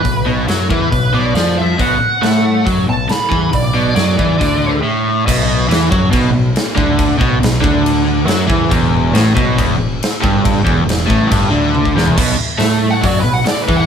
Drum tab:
CC |----------------|----------------|----------------|x---x---x---x---|
HH |o---o---o---o---|o---o---o---o---|o---o---o-------|----------------|
SD |----o-------o---|----o-------o---|----o-----------|----o-------o---|
T1 |----------------|----------------|----------------|----------------|
FT |----------------|----------------|----------------|----------------|
BD |o-----o-o-------|o-------o-----o-|o-----o-o-------|o-----o-o-----o-|

CC |x---x---x---x---|x---x---x---x---|x---x---x-------|x---------------|
HH |----------------|----------------|----------------|----o---o---o---|
SD |----o-------o---|----o-------o---|----o---------o-|----o-------o---|
T1 |----------------|----------------|------------o---|----------------|
FT |----------------|----------------|---------------o|----------------|
BD |o-o---o-------o-|o-----o-o-----o-|o-o---o-o----o--|o-------o-----o-|